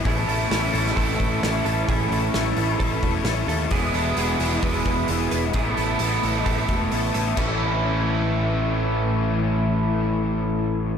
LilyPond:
<<
  \new Staff \with { instrumentName = "Clean electric guitar" } { \time 4/4 \key a \major \tempo 4 = 131 gis'8 a'8 r4 a'4 r8 a'8 | gis'8 a'8 r4 a'4 r8 a'8 | gis'8 a'8 gis'4 b'4 r8 b'8 | gis'8 a'8 r4 a'4 r8 a'8 |
a'8 r2. r8 | r1 | }
  \new Staff \with { instrumentName = "Overdriven electric guitar" } { \time 4/4 \key a \major <a cis' e' a'>8 <cis' e' a'>8 <a cis' e' a'>8 <cis' e' a'>8 <a cis' e' a'>8 <cis' e' a'>8 <a cis' e' a'>8 <cis' e' a'>8 | <a cis' e' a'>8 <cis' e' a'>8 <a cis' e' a'>8 <cis' e' a'>8 <a cis' e' a'>8 <cis' e' a'>8 <a cis' e' a'>8 <cis' e' a'>8 | <e gis b e' gis'>8 <b e' gis'>8 <gis b e' gis'>8 <b e' gis'>8 <e gis b e' gis'>8 <b e' gis'>8 <gis b e' gis'>8 <b e' gis'>8 | <a b e' a'>8 <b e' a'>8 <a b e' a'>8 <b e' a'>8 <a b e' a'>8 <b e' a'>8 <a b e' a'>8 <b e' a'>8 |
<a, e a cis' e'>1~ | <a, e a cis' e'>1 | }
  \new Staff \with { instrumentName = "Overdriven electric guitar" } { \time 4/4 \key a \major <a, e a cis' e'>1~ | <a, e a cis' e'>1 | <e, b, e gis b e'>1 | <a, e a b e'>1 |
<a, e a cis' e'>1~ | <a, e a cis' e'>1 | }
  \new Staff \with { instrumentName = "Picked electric bass" } { \clef bass \time 4/4 \key a \major a,,8 a,,8 a,,8 a,,8 a,,8 a,,8 a,,8 a,,8 | a,,8 a,,8 a,,8 a,,8 a,,8 e,,8 a,,8 dis,8 | e,,8 e,,8 e,,8 e,,8 e,,8 e,,8 e,,8 e,,8 | a,,8 a,,8 a,,8 a,,8 a,,8 e,,8 a,,8 a,,8 |
a,,1~ | a,,1 | }
  \new DrumStaff \with { instrumentName = "Drums" } \drummode { \time 4/4 <hho bd>8 hho8 <hho sn>8 hho16 sn16 <hho bd>8 <hho bd>8 <hho sn>8 hho8 | <hho bd>8 hho8 <hho sn>8 hho8 <hho bd>8 <hho bd>8 <hho sn>8 hho8 | <hho bd>8 hho8 hho8 hho8 <hho bd>8 <hho bd>8 hho8 hho8 | <hho bd>8 hho8 hho8 hho8 <hho bd>8 <hho bd>8 hho8 hho8 |
<cymc bd>4 r4 r4 r4 | r4 r4 r4 r4 | }
>>